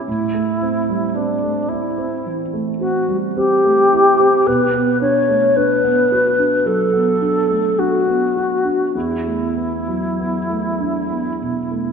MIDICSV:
0, 0, Header, 1, 3, 480
1, 0, Start_track
1, 0, Key_signature, 1, "minor"
1, 0, Tempo, 1088929
1, 28, Time_signature, 4, 2, 24, 8
1, 988, Tempo, 1107011
1, 3388, Tempo, 1165049
1, 3868, Tempo, 1226994
1, 5034, End_track
2, 0, Start_track
2, 0, Title_t, "Alto flute"
2, 0, Program_c, 0, 73
2, 26, Note_on_c, 0, 64, 58
2, 506, Note_on_c, 0, 62, 51
2, 513, Note_off_c, 0, 64, 0
2, 744, Note_on_c, 0, 64, 59
2, 750, Note_off_c, 0, 62, 0
2, 1089, Note_off_c, 0, 64, 0
2, 1228, Note_on_c, 0, 66, 61
2, 1388, Note_off_c, 0, 66, 0
2, 1473, Note_on_c, 0, 67, 68
2, 1953, Note_on_c, 0, 71, 73
2, 1959, Note_off_c, 0, 67, 0
2, 2186, Note_off_c, 0, 71, 0
2, 2189, Note_on_c, 0, 73, 66
2, 2427, Note_on_c, 0, 71, 71
2, 2434, Note_off_c, 0, 73, 0
2, 2906, Note_on_c, 0, 69, 68
2, 2912, Note_off_c, 0, 71, 0
2, 3392, Note_on_c, 0, 66, 56
2, 3398, Note_off_c, 0, 69, 0
2, 3869, Note_off_c, 0, 66, 0
2, 3871, Note_on_c, 0, 64, 53
2, 5034, Note_off_c, 0, 64, 0
2, 5034, End_track
3, 0, Start_track
3, 0, Title_t, "Grand piano"
3, 0, Program_c, 1, 0
3, 0, Control_c, 1, 64, 127
3, 35, Note_on_c, 1, 45, 41
3, 36, Control_c, 1, 64, 0
3, 117, Control_c, 1, 64, 127
3, 151, Note_on_c, 1, 57, 34
3, 274, Note_on_c, 1, 60, 33
3, 343, Note_off_c, 1, 57, 0
3, 393, Note_on_c, 1, 55, 33
3, 463, Note_off_c, 1, 60, 0
3, 512, Note_on_c, 1, 60, 31
3, 582, Note_off_c, 1, 55, 0
3, 633, Note_on_c, 1, 57, 36
3, 701, Note_off_c, 1, 60, 0
3, 754, Note_on_c, 1, 64, 36
3, 822, Note_off_c, 1, 57, 0
3, 872, Note_on_c, 1, 60, 35
3, 943, Note_off_c, 1, 64, 0
3, 974, Note_off_c, 1, 45, 0
3, 997, Note_on_c, 1, 52, 33
3, 1063, Note_off_c, 1, 60, 0
3, 1116, Note_on_c, 1, 57, 36
3, 1186, Note_off_c, 1, 52, 0
3, 1232, Note_on_c, 1, 60, 32
3, 1307, Note_off_c, 1, 57, 0
3, 1353, Note_on_c, 1, 55, 33
3, 1427, Note_off_c, 1, 60, 0
3, 1476, Note_on_c, 1, 60, 40
3, 1548, Note_off_c, 1, 55, 0
3, 1597, Note_on_c, 1, 57, 35
3, 1669, Note_off_c, 1, 60, 0
3, 1718, Note_on_c, 1, 64, 36
3, 1788, Note_off_c, 1, 57, 0
3, 1836, Note_on_c, 1, 60, 38
3, 1907, Note_off_c, 1, 64, 0
3, 1954, Note_off_c, 1, 60, 0
3, 1954, Note_on_c, 1, 47, 52
3, 1959, Control_c, 1, 64, 0
3, 2032, Control_c, 1, 64, 127
3, 2071, Note_on_c, 1, 59, 36
3, 2190, Note_on_c, 1, 62, 35
3, 2263, Note_off_c, 1, 59, 0
3, 2309, Note_on_c, 1, 57, 39
3, 2382, Note_off_c, 1, 62, 0
3, 2429, Note_on_c, 1, 62, 35
3, 2501, Note_off_c, 1, 57, 0
3, 2549, Note_on_c, 1, 59, 40
3, 2619, Note_off_c, 1, 62, 0
3, 2669, Note_on_c, 1, 66, 39
3, 2738, Note_off_c, 1, 59, 0
3, 2786, Note_on_c, 1, 62, 33
3, 2857, Note_off_c, 1, 66, 0
3, 2887, Note_off_c, 1, 47, 0
3, 2903, Note_on_c, 1, 54, 37
3, 2976, Note_off_c, 1, 62, 0
3, 3022, Note_on_c, 1, 59, 32
3, 3096, Note_off_c, 1, 54, 0
3, 3144, Note_on_c, 1, 62, 33
3, 3218, Note_off_c, 1, 59, 0
3, 3270, Note_on_c, 1, 57, 32
3, 3340, Note_off_c, 1, 62, 0
3, 3392, Note_on_c, 1, 62, 34
3, 3461, Note_off_c, 1, 57, 0
3, 3509, Note_on_c, 1, 59, 31
3, 3579, Note_off_c, 1, 62, 0
3, 3630, Note_on_c, 1, 66, 30
3, 3698, Note_off_c, 1, 59, 0
3, 3747, Note_on_c, 1, 62, 28
3, 3822, Note_off_c, 1, 66, 0
3, 3870, Note_off_c, 1, 62, 0
3, 3872, Note_on_c, 1, 40, 39
3, 3876, Control_c, 1, 64, 0
3, 3945, Control_c, 1, 64, 127
3, 3993, Note_on_c, 1, 57, 25
3, 4112, Note_on_c, 1, 59, 29
3, 4185, Note_off_c, 1, 57, 0
3, 4236, Note_on_c, 1, 54, 27
3, 4306, Note_off_c, 1, 59, 0
3, 4358, Note_on_c, 1, 59, 30
3, 4428, Note_off_c, 1, 54, 0
3, 4478, Note_on_c, 1, 57, 30
3, 4548, Note_off_c, 1, 59, 0
3, 4596, Note_on_c, 1, 62, 29
3, 4667, Note_off_c, 1, 57, 0
3, 4713, Note_on_c, 1, 59, 25
3, 4785, Note_off_c, 1, 62, 0
3, 4817, Note_off_c, 1, 40, 0
3, 4834, Note_on_c, 1, 47, 26
3, 4903, Note_off_c, 1, 59, 0
3, 4954, Note_on_c, 1, 57, 25
3, 5024, Note_off_c, 1, 47, 0
3, 5034, Note_off_c, 1, 57, 0
3, 5034, End_track
0, 0, End_of_file